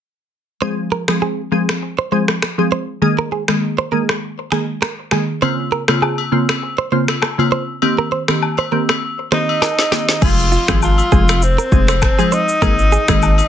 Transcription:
0.62 F3 G#3 C4 G#4 C5
0.92 A#4
1.08 F3 G#3 C4 G#4, finger snap, cross-stick
1.22 G#4
1.52 F3 G#3 C4 G#4
1.69 finger snap, cross-stick
1.99 C5
2.12 F3 G#3 C4 G#4 C5
2.28 finger snap, cross-stick
2.42 finger snap, cross-stick
2.58 F3 G#3 C4 G#4
2.72 C5
3.02 D#3 G#3 A#3 G#4
3.19 A#4
3.32 G#4
3.48 D#3 G#3 A#3 G#4, finger snap, cross-stick
3.78 C5
3.92 D#3 G#3 A#3 G#4 A#4
4.09 finger snap, cross-stick
4.52 D#3 G#3 A#3 G#4, finger snap, cross-stick
4.82 A#4, finger snap, cross-stick
5.11 D#3 G#3 A#3 G#4, finger snap, cross-stick
5.42 C#3 A#3 C4 F4 C5, high agogo
5.72 A#4
5.88 C#3 A#3 C4 F4, finger snap, cross-stick, high agogo
6.02 G#4, low woodblock
6.18 high agogo
6.32 C#3 A#3 C4 F4
6.49 finger snap, cross-stick, high agogo
6.78 C5
6.92 C#3 A#3 C4 F4 C5
7.08 finger snap, cross-stick, high agogo
7.22 finger snap, cross-stick, low woodblock
7.38 C#3 A#3 C4 F4, high agogo
7.52 C5
7.82 D#3 A#3 C4 G4, high agogo
7.99 A#4
8.12 C5
8.28 D#3 A#3 C4 G4, finger snap, cross-stick, high agogo
8.42 low woodblock
8.58 C5, high agogo
8.72 D#3 A#3 C4 G4 A#4
8.89 finger snap, cross-stick, high agogo
9.32 D#3 A#3 C4 D#4 G4 C5, finger snap, cross-stick
9.49 high agogo
9.62 A#4, snare, low woodblock
9.79 snare, high agogo
9.92 D#3 A#3 C4 G4, snare
10.09 snare
10.22 F1 F3 G#3 C4 F4 G#4, kick, crash, high agogo, shaker
10.39 shaker
10.52 F4, shaker
10.68 G#1 F3 G#3 C4 G#4, finger snap, kick, cross-stick, high agogo, shaker
10.82 F4, low woodblock, shaker
10.98 high agogo, shaker
11.12 F1 F3 G#3 C4 G#4, kick, shaker
11.29 finger snap, cross-stick, high agogo, shaker
11.42 C4, shaker
11.58 A#4, shaker
11.72 F1 F3 G#3 C4 G#4, kick, shaker
11.88 C5, finger snap, cross-stick, high agogo, shaker
12.02 C4, finger snap, kick, cross-stick, low woodblock, shaker
12.18 F3 G#3 C4 G#4, high agogo, shaker
12.32 D#4 C5, shaker
12.49 shaker
12.62 G#1 D#3 G#3 A#3 G#4 A#4, kick, high agogo, shaker
12.79 shaker
12.92 G#4, shaker
13.08 G#1 D#3 G#3 A#3 G#4, finger snap, kick, cross-stick, high agogo, shaker
13.22 low woodblock, shaker
13.38 high agogo, shaker

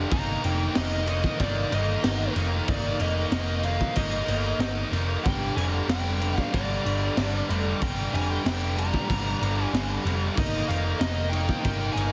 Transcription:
Already playing: G2 G3
0.09 G1 D#3 A#3 D#4 A#4 F5 A#5, kick, crash
0.43 F1 D#3 A#3 D#4 G5, crash
0.75 F1 D#3 A#3 D#4 D#5, snare, crash
1.07 D#3 A#3 D#4 D#5, crash
1.24 kick, snare
1.40 G1 D#3 A#3 D#4 D5, kick, crash
1.71 G1 D#3 A#3 D#4 D#5, crash
2.03 G1 D#3 A#3 D#4, snare, crash
2.36 F1 D#3 A#3 D#4, crash
2.68 G1 D#3 A#3 D#4 D5, kick, crash
3.00 F1 D#3 A#3 D#4 D#5, crash
3.31 F1 D#3 A#3 D#4, snare, crash
3.63 D#3 A#3 D#4 F5, crash
3.81 kick, snare
3.96 G1 D#3 A#3 D#4 D#5, kick, crash
4.28 G1 D#3 A#3 D#4, crash
4.59 G1 D#3 A#3 D#4, snare, crash
4.92 F1 D#3 A#3 D#4, crash
5.24 G1 G2 D3 G3 D5 G5 A#5, kick, crash
5.56 F1 G2 D3 G3 G#5, crash
5.88 F1 G2 D3 G3 G5, snare, crash
6.20 G2 D3 G3, crash
6.38 F5, kick, snare
6.53 G1 G2 D3 G3 D5, kick, crash
6.85 G1 G2 D3 G3, crash
7.17 G1 G2 D3 G3, snare, crash
7.49 F1 G2 D3 G3, crash
7.81 G1 G2 D3 G3 G5, kick, crash
8.12 F1 G2 D3 G3 G#5, crash
8.30 G5
8.44 F1 G2 D3 G3 G5, snare, crash
8.77 G2 D3 G3 A#5, crash
8.94 kick, snare
9.09 G1 G2 D3 G3, kick, crash
9.41 G1 G2 D3 G3, crash
9.63 G#5
9.73 G1 G2 D3 G3, snare, crash
10.05 F1 G2 D3 G3, crash
10.36 G1 D#3 A#3 D#4 A#4 D#5 F5, kick, crash
10.68 F1 D#3 A#3 D#4 F5, crash
10.99 F1 D#3 A#3 D#4 D#5, snare, crash
11.30 D#3 A#3 D#4 G5, crash
11.49 kick, snare
11.61 G1 D#3 A#3 D#4 G5, kick, crash
11.88 G5
11.93 G1 D#3 A#3 D#4 G#5
11.97 crash

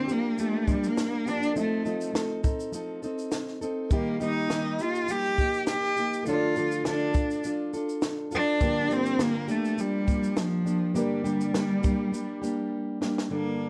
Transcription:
Already playing: G3 C4 F4 A#4
0.08 F3 A#3 D4 G4, shaker
0.12 A#3
0.38 F3 A3 A#3 D4 G4, shaker
0.67 F3 A#3 D4 G4, kick, shaker
0.71 G3
0.83 A#3, shaker
0.97 snare, shaker
1.26 F3 A#3 D4 G4, shaker
1.43 shaker
1.54 F3 A3 C4 D#4 F4 A4 D#5, shaker
1.60 A3
1.85 F3 C4 D#4 A4, shaker
2.01 shaker
2.13 F3 C4 D#4 A4, snare, shaker
2.44 C4 D#4 A4, kick, shaker
2.60 shaker
2.72 F3 C4 D#4 A4, shaker
3.03 C4 D#4 A4, shaker
3.19 shaker
3.32 snare, shaker
3.48 snare
3.61 C4 D#4 A4, shaker
3.89 D#3 G3 A#3 D#4 G4 D#5, kick, shaker
3.94 A#3
4.20 D#3 G3 A#3 D#4 G4, shaker
4.50 D#3 G3 A#3 D#4 G4, snare, shaker
4.79 D#4 F4 G4, shaker
4.83 A#3
4.95 shaker
5.08 G3 A#3 D#4 G4, shaker
5.38 A#3 D#4 G4, kick, shaker
5.54 shaker
5.67 G4, snare, shaker
5.83 snare
5.97 A#3 D#4 G4, shaker
6.13 shaker
6.24 D3 F3 A3 D4 F4, shaker
6.28 F4 A4 C#5
6.35 D5
6.56 D3 F3 D4 F4 A4, shaker
6.71 shaker
6.85 D3 F3 D4 F4 A4, snare, shaker
7.14 D4 F4 A4, kick, shaker
7.30 shaker
7.44 F3 D4 F4 A4, shaker
7.74 D4 F4 A4, shaker
7.89 shaker
8.02 snare, shaker
8.31 D4 F4 A4, shaker
8.59 G2 D3 F3 G3 A#3 D4 F4 G4, kick, shaker
8.63 A#4
8.90 G2 D3 F3 A#3 C4 D4 G4, shaker
9.06 shaker
9.18 G2 D3 F3 A#3 D4 G4, snare, shaker
9.23 A#3
9.48 F3 A3 A#3 D4 G4, shaker
9.65 shaker
9.78 F3 G3 A#3 D4 G4, shaker
10.06 F3 A#3 D4 G4, kick, shaker
10.23 shaker
10.37 F3, snare, shaker
10.65 F3 A#3 D4 G4, shaker
10.94 G2 D3 G3 A#3 D4 G4, shaker
10.98 A#4
11.24 G2 D3 G3 A#3 D4 G4, shaker
11.41 shaker
11.54 G2 D3 G3 A#3 D4 G4, snare, shaker
11.83 G3 A#3 D4 G4, kick, shaker
12.12 G3 A#3 D4 G4, shaker
12.42 G3 A#3 D4 G4, shaker
13.01 G3 A#3 D4 G4, snare
13.18 snare
13.30 G2 D3 G3 A#3 D4 A4

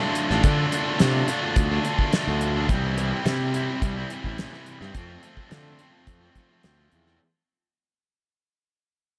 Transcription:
Already playing: D3
0.01 A3 D4 F4
0.15 closed hi-hat
0.29 A1 A3 D4 F4, snare
0.43 D3 A3 D4 F4, kick, closed hi-hat
0.71 D3 A3 D4 F4, closed hi-hat
0.85 A3 D4 F4
0.98 C3 D3 A3 D4 F4, snare, closed hi-hat
1.27 D3 A3 D4 F4, closed hi-hat
1.42 A3 D4 F4
1.56 D2, kick, closed hi-hat
1.69 A3 D4 F4
1.83 D3 A3 D4 F4, closed hi-hat
1.98 A3 D4 F4, kick
2.11 D3 A3 D4 F4, snare, closed hi-hat
2.26 D2 A3 D4 F4
2.41 closed hi-hat
2.53 A3 D4 F4
2.68 C2 C3 E3 G3 C4 E4, kick, closed hi-hat
2.96 E3 G3 C4 E4, closed hi-hat
3.11 G3 C4 E4
3.25 C3 E3 G3 C4 E4, snare, closed hi-hat
3.53 E3 G3 C4 E4, closed hi-hat
3.68 G3 C4 E4
3.82 C2, kick, closed hi-hat
3.96 G3 C4 E4
4.10 E3 G3 C4 E4, closed hi-hat
4.24 A1 G3 C4 E4, kick
4.38 C3 E3 G3 C4 E4, snare, closed hi-hat
4.52 G3 C4 E4, snare
4.66 closed hi-hat
4.80 G2 G3 C4 E4, snare
4.94 F2 F3 A3 C4 F4, kick, closed hi-hat
5.21 F3 A3 C4 F4, closed hi-hat
5.36 A3 C4 F4, kick
5.49 D3 F3 A3 C4 F4, snare, closed hi-hat
5.78 F3 A3 C4 F4, closed hi-hat
5.92 A3 C4 F4
6.07 F2, kick, closed hi-hat
6.21 A3 C4 F4
6.35 F3 A3 C4 F4, kick, closed hi-hat
6.49 A3 C4 F4
6.62 D2 F3 A3 C4 F4, snare, closed hi-hat
6.77 A3 C4 F4
6.92 E2, closed hi-hat
7.06 A3 C4 F4, snare

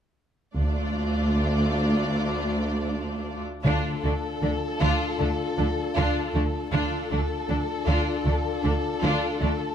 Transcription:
0.57 D2 A3 D4 F4 D5
3.64 D2 D3 D4 F4 A4
4.04 D2 D3 A3 D4
4.42 D2 D3 D4
4.80 D2 D3 D4 F4
5.19 D2 D3 A3 D4
5.57 D2 D3 D4
5.96 D2 D3 D4 F4
6.34 D2 D3 A3 D4
6.72 D2 D3 D4 F4 A4
7.11 D2 D3 A3 D4
7.49 D2 D3 D4
7.87 D2 D3 D4 F4
8.25 D2 D3 A3 D4
8.63 D2 D3 D4
9.02 D2 D3 D4 F4
9.40 D2 D3 A3 D4

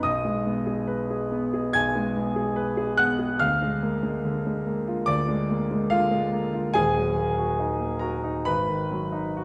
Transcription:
0.03 B1 D#5 D#6
0.25 G#3
0.46 B3
0.67 G#4
0.88 B4
1.11 G#4
1.32 B3
1.54 G#4
1.73 B1 G#5 G#6
1.95 G#3
2.17 B3
2.36 G#4
2.56 B4
2.77 G#4
2.97 B3 F#5 F#6
3.19 G#4
3.39 D2 F5 F6
3.62 G#3
3.83 A#3
4.03 G#3
4.25 D3
4.47 G#3
4.66 A#3
4.87 F4
5.06 D2 D5 D6
5.29 G#3
5.49 A#3
5.71 G#3
5.90 D3 F4 F5
6.11 G#3
6.32 A#3
6.54 F4
6.74 D#1 D#2 G#4 G#5
6.97 F#3
7.17 A#3
7.38 F#4
7.59 D#4
7.80 A#3
7.99 F#4 A#4 A#5
8.24 D#4
8.45 G#1 B4 B5
8.68 D#3
8.91 F#3
9.12 D#4
9.37 F#4

